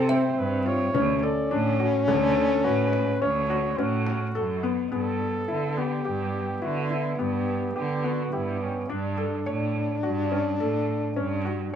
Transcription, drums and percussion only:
0.09 frame drum
0.95 frame drum
1.23 frame drum
1.80 frame drum
2.08 frame drum
2.93 frame drum
3.50 frame drum
3.78 frame drum
4.07 frame drum

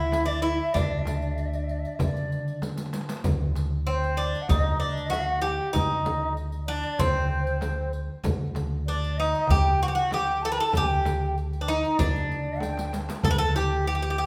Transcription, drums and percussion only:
0.12 riq, darbuka tek, frame drum
0.44 riq, darbuka ka
0.74 riq, darbuka dum, frame drum
1.05 riq, darbuka tek, frame drum
1.21 riq, darbuka ka
1.36 riq, darbuka ka
1.53 riq, darbuka ka
1.67 riq, darbuka ka
1.84 riq, darbuka ka
1.99 riq, darbuka dum, frame drum
2.15 riq, darbuka ka
2.30 riq, darbuka ka
2.48 riq
2.62 riq, darbuka tek, frame drum
2.69 darbuka ka
2.77 riq, darbuka tek
2.86 darbuka ka
2.93 riq, darbuka tek
3.01 darbuka ka
3.09 riq, darbuka tek
3.17 darbuka ka
3.24 riq, frame drum, darbuka dum
3.55 riq, darbuka tek
3.87 riq, darbuka ka
4.04 riq
4.33 riq, darbuka ka
4.49 riq, darbuka dum, frame drum
4.65 darbuka ka
4.81 darbuka ka
4.96 riq, darbuka ka
5.12 riq, darbuka tek, frame drum
5.44 riq
5.74 riq, darbuka dum, frame drum
6.05 riq, darbuka tek, frame drum
6.37 riq, darbuka ka
6.52 riq
6.83 riq, darbuka ka
6.99 riq, darbuka dum, frame drum
7.15 darbuka ka
7.31 darbuka ka
7.47 riq
7.61 riq, darbuka tek, frame drum
7.93 riq, darbuka ka
8.24 riq, darbuka dum, frame drum
8.55 riq, darbuka tek, frame drum
8.86 riq, darbuka ka
9.04 riq
9.35 riq
9.47 riq, darbuka dum, frame drum
9.64 darbuka ka
9.97 riq
10.11 riq, darbuka tek, frame drum
10.42 riq, darbuka ka
10.73 riq, frame drum, darbuka dum
11.05 riq, darbuka tek, frame drum
11.21 darbuka ka
11.36 riq, darbuka ka
11.52 riq, darbuka ka
11.68 riq, darbuka ka
11.84 riq
11.99 riq, frame drum, darbuka dum
12.15 riq, darbuka ka
12.31 riq, darbuka ka
12.60 riq, darbuka tek, frame drum
12.69 darbuka ka
12.77 riq, darbuka tek
12.85 darbuka ka
12.93 riq, darbuka tek
13.01 darbuka ka
13.09 riq, darbuka tek
13.16 darbuka ka
13.23 riq, frame drum, darbuka dum
13.55 riq, darbuka tek, frame drum
13.88 riq
14.03 riq

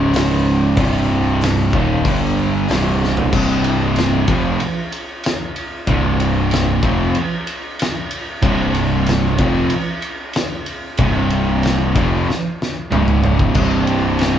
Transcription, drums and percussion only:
0.14 snare, open hi-hat
0.77 kick, open hi-hat
1.41 snare, open hi-hat
1.73 kick
2.05 kick, open hi-hat
2.68 snare, open hi-hat
3.04 snare
3.17 floor tom
3.33 kick, crash
3.64 ride
3.96 snare, ride
4.28 kick, ride
4.60 ride
4.92 ride
5.24 snare, ride
5.56 ride
5.87 kick, ride
6.20 ride
6.51 snare, ride
6.83 kick, ride
7.15 ride
7.47 ride
7.79 snare, ride
8.11 ride
8.42 kick, ride
8.75 ride
9.06 snare, ride
9.38 kick, ride
9.70 ride
10.02 ride
10.33 snare, ride
10.66 ride
10.97 kick, ride
11.30 ride
11.63 snare, ride
11.95 kick, ride
12.30 snare
12.62 snare
12.92 mid tom
13.08 mid tom
13.24 floor tom
13.39 kick
13.55 kick, crash
13.87 ride
14.19 snare, ride

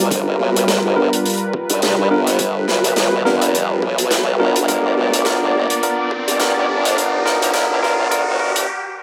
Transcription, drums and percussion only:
0.11 kick, closed hi-hat
0.56 closed hi-hat
0.68 snare, closed hi-hat
1.13 closed hi-hat
1.25 closed hi-hat
1.30 closed hi-hat
1.34 closed hi-hat
1.37 closed hi-hat
1.53 kick
1.70 closed hi-hat
1.82 snare, closed hi-hat
2.27 snare, closed hi-hat
2.39 kick, closed hi-hat
2.68 snare
2.84 closed hi-hat
2.96 snare, closed hi-hat
3.26 snare
3.42 closed hi-hat
3.55 closed hi-hat
3.82 kick
3.98 closed hi-hat
4.11 snare, closed hi-hat
4.56 closed hi-hat
4.68 kick, closed hi-hat
5.13 closed hi-hat
5.25 snare, closed hi-hat
5.70 closed hi-hat
5.83 closed hi-hat
6.11 kick
6.28 closed hi-hat
6.40 snare, closed hi-hat
6.85 snare, closed hi-hat
6.97 kick, closed hi-hat
7.26 snare
7.42 closed hi-hat
7.54 snare, closed hi-hat
7.83 snare
8.12 closed hi-hat
8.39 kick
8.56 kick, closed hi-hat

